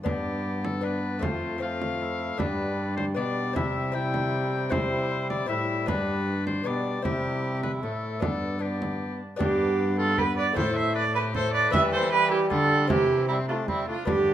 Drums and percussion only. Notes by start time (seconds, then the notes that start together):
0.06 frame drum
0.65 frame drum
1.23 frame drum
1.82 frame drum
2.40 frame drum
2.98 frame drum
3.56 frame drum
4.14 frame drum
4.72 frame drum
5.30 frame drum
5.88 frame drum
6.47 frame drum
7.05 frame drum
7.64 frame drum
8.22 frame drum
8.82 frame drum
9.40 frame drum
10.18 frame drum
10.57 frame drum
11.35 frame drum
11.74 frame drum
12.51 frame drum
12.90 frame drum
13.68 frame drum
14.07 frame drum